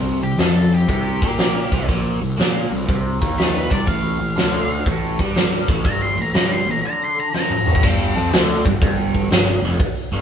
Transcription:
0.00 0.20 C2 medium
0.00 0.21 C3 loud
0.22 0.37 C2 medium
0.22 0.38 C3 medium
0.22 0.39 G4 medium
0.22 open hi-hat soft
0.38 0.85 F2 medium
0.38 0.88 F3 loud
0.38 0.72 A4 medium
0.38 snare loud
0.38 open hi-hat medium
0.72 0.88 G4 medium
0.72 open hi-hat soft
0.88 1.20 C2 medium
0.88 1.21 C3 medium
0.88 1.86 G4 loud
0.88 kick medium
0.88 open hi-hat medium
1.21 1.69 A#2 medium
1.21 1.70 A#3 medium
1.21 kick medium
1.21 open hi-hat soft
1.38 snare loud
1.38 open hi-hat medium
1.71 1.87 C2 medium
1.71 1.87 C3 loud
1.71 kick medium
1.71 open hi-hat soft
1.88 2.20 A#1 medium
1.88 2.21 A#2 medium
1.88 kick medium
1.88 open hi-hat medium
2.21 2.37 C2 medium
2.21 2.35 C3 medium
2.21 open hi-hat soft
2.37 2.69 A#2 medium
2.37 2.70 A#3 loud
2.37 snare loud
2.37 open hi-hat medium
2.71 2.87 C2 medium
2.71 2.85 C3 medium
2.71 open hi-hat soft
2.87 3.19 C2 medium
2.87 3.20 C3 loud
2.87 kick medium
2.87 open hi-hat medium
3.21 3.68 D#2 medium
3.21 3.70 D#3 loud
3.21 kick medium
3.21 open hi-hat soft
3.38 3.55 A4 medium
3.38 snare loud
3.38 open hi-hat medium
3.55 3.70 B4 medium
3.70 3.86 C2 medium
3.70 3.86 C3 medium
3.70 3.86 D5 medium
3.70 kick medium
3.70 open hi-hat soft
3.87 4.18 A1 medium
3.87 4.19 A2 medium
3.87 4.84 F5 medium
3.87 kick loud
3.87 open hi-hat medium
4.20 4.35 A1 medium
4.20 4.33 A#2 medium
4.20 open hi-hat medium
4.36 4.83 D2 medium
4.36 4.85 D3 loud
4.36 snare loud
4.36 open hi-hat medium
4.70 open hi-hat soft
4.86 5.17 A1 medium
4.86 5.19 A2 loud
4.86 kick loud
4.86 open hi-hat medium
5.19 5.65 G2 medium
5.19 5.68 G3 loud
5.19 kick medium
5.19 open hi-hat soft
5.35 snare loud
5.35 open hi-hat medium
5.68 5.84 A1 medium
5.68 5.85 A2 loud
5.68 kick loud
5.68 open hi-hat medium
5.84 6.15 G1 medium
5.84 6.18 G2 loud
5.84 6.02 A#5 medium
5.84 kick medium
5.84 open hi-hat medium
6.02 6.18 C6 medium
6.16 6.32 A1 medium
6.16 6.31 A#2 medium
6.16 open hi-hat soft
6.22 6.35 A#5 medium
6.33 6.64 G2 medium
6.33 6.67 G3 loud
6.33 snare loud
6.33 open hi-hat medium
6.37 6.52 A#5 medium
6.53 6.68 C6 medium
6.66 6.82 A1 medium
6.66 6.81 A#2 medium
6.66 open hi-hat soft
6.71 6.85 A#5 medium
6.85 7.33 D3 loud
6.85 7.01 A#5 medium
7.05 7.19 C6 medium
7.20 7.34 A#5 medium
7.34 7.66 F3 medium
7.34 7.51 A#5 loud
7.34 snare medium
7.50 7.83 A#5 medium
7.50 mid tom medium
7.66 7.83 A2 medium
7.66 mid tom medium
7.75 kick medium
7.83 8.14 G1 medium
7.83 8.16 G2 loud
7.83 kick loud
7.83 crash loud
8.16 8.31 F2 loud
8.16 8.32 F3 loud
8.32 8.63 D2 medium
8.32 8.64 D3 loud
8.32 snare loud
8.32 open hi-hat medium
8.65 8.81 G1 medium
8.65 8.78 G2 medium
8.65 kick medium
8.81 9.28 G1 loud
8.81 9.29 G2 loud
8.81 kick loud
8.81 open hi-hat medium
9.15 kick medium
9.31 9.61 G1 medium
9.31 9.57 G2 medium
9.31 snare loud
9.31 open hi-hat medium
9.62 9.78 F1 medium
9.62 9.79 F2 loud
9.79 muted overdriven electric guitar stroke medium
9.79 muted picked electric bass stroke soft
9.79 kick loud
9.79 open hi-hat medium
10.12 10.21 G1 medium
10.12 10.21 G2 loud

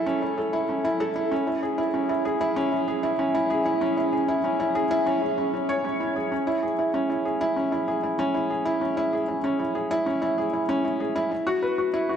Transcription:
0.00 0.06 C#4 medium
0.00 0.22 E4 loud
0.00 0.38 A4 loud
0.06 0.21 C#4 loud
0.22 0.37 E4 medium
0.38 0.52 A4 medium
0.53 0.62 E4 medium
0.69 0.84 C#4 medium
0.85 0.99 E4 medium
1.00 1.09 A4 loud
1.16 1.30 E4 loud
1.31 1.46 C#4 loud
1.47 1.62 E4 medium
1.63 1.77 G#4 medium
1.78 1.87 E4 medium
1.94 2.09 C#4 medium
2.09 2.24 E4 medium
2.25 2.34 G#4 medium
2.41 2.55 E4 loud
2.56 2.71 C#4 loud
2.72 2.87 E4 medium
2.88 3.02 G#4 medium
3.03 3.12 E4 medium
3.19 3.34 C#4 medium
3.35 3.49 E4 loud
3.50 3.59 G#4 medium
3.65 3.80 E4 loud
3.81 3.96 C#4 medium
3.97 4.12 E4 medium
4.13 4.27 G#4 medium
4.28 4.37 E4 loud
4.44 4.59 C#4 medium
4.60 4.74 E4 medium
4.75 4.84 G#4 loud
4.91 5.06 E4 loud
5.06 5.21 C#4 loud
5.22 5.37 E4 medium
5.38 5.52 C#4 medium
5.54 5.68 C#4 medium
5.69 5.84 C#5 loud
5.85 5.99 C#4 medium
6.00 6.15 E4 medium
6.16 6.31 G#4 medium
6.32 6.46 C#4 medium
6.47 6.62 E4 loud
6.63 6.71 G#4 medium
6.79 6.87 E4 medium
6.94 7.09 C#4 medium
7.10 7.24 E4 medium
7.25 7.40 G#4 medium
7.41 7.56 E4 loud
7.56 7.71 C#4 medium
7.72 7.87 E4 medium
7.88 7.97 G#4 medium
8.03 8.12 E4 medium
8.19 8.34 C#4 loud
8.34 8.49 E4 medium
8.50 8.65 G#4 medium
8.65 8.80 E4 loud
8.81 8.96 C#4 medium
8.97 9.12 E4 loud
9.13 9.21 G#4 medium
9.28 9.37 E4 medium
9.44 9.59 C#4 medium
9.59 9.74 E4 medium
9.75 9.90 G#4 medium
9.91 10.06 E4 loud
10.06 10.21 C#4 medium
10.22 10.37 E4 loud
10.38 10.47 G#4 medium
10.53 10.62 E4 medium
10.69 10.84 C#4 loud
10.85 10.99 E4 medium
11.00 11.15 G#4 medium
11.16 11.30 E4 loud
11.31 11.46 E4 medium
11.47 11.62 F#4 loud
11.62 11.71 B4 medium
11.78 11.87 F#4 medium
11.94 12.08 E4 loud
12.09 12.16 F#4 medium

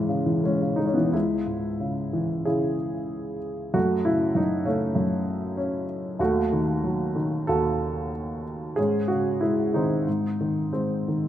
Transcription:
0.00 1.10 C#2 soft
0.00 1.16 G#2 soft
0.00 0.09 C#3 soft
0.00 0.26 E3 soft
0.00 0.44 G#3 soft
0.00 1.10 E4 soft
0.00 0.42 G#4 soft
0.00 0.41 C#5 medium
0.09 0.60 C#3 soft
0.26 0.96 E3 soft
0.44 0.78 G#3 soft
0.44 0.78 C#4 soft
0.62 1.12 C#3 soft
0.76 1.13 G#3 soft
0.76 0.86 D#4 soft
0.86 0.96 C#4 soft
0.94 1.14 E3 soft
0.94 1.04 B3 soft
1.13 3.70 C#2 soft
1.13 2.43 G#3 soft
1.13 2.46 E4 soft
1.46 2.74 G#2 soft
1.80 2.44 C#3 soft
2.13 3.38 E3 soft
2.45 3.70 C#3 soft
2.45 3.71 E4 soft
2.45 3.78 G#4 soft
3.74 4.33 F#2 soft
3.74 4.66 A3 soft
3.74 4.06 F#4 medium
4.05 4.64 C#3 soft
4.05 4.37 E4 medium
4.35 4.94 F#2 soft
4.35 4.67 D#4 soft
4.65 5.84 C#3 soft
4.65 5.85 A3 soft
4.65 5.56 C#4 medium
4.95 6.16 F#2 soft
5.57 6.21 C#4 soft
6.19 7.47 D#2 soft
6.19 7.45 A3 soft
6.19 7.47 F#4 medium
6.52 7.14 D#3 soft
6.84 8.10 F#3 soft
7.16 8.42 D#3 soft
7.47 8.74 D#2 soft
7.47 8.74 F#4 soft
7.47 8.73 A4 medium
8.76 10.04 G#2 soft
8.76 10.04 C#4 soft
8.76 9.09 G#4 medium
9.08 10.05 C#3 soft
9.08 9.42 F#4 medium
9.41 10.05 G#3 soft
9.41 9.72 E4 soft
9.74 10.06 D#3 soft
9.74 10.71 C4 soft
9.74 10.70 D#4 soft
10.07 11.28 G#2 soft
10.41 11.07 D#3 soft
10.73 11.28 G#3 soft
10.73 11.28 C4 soft
11.08 11.28 D#3 soft

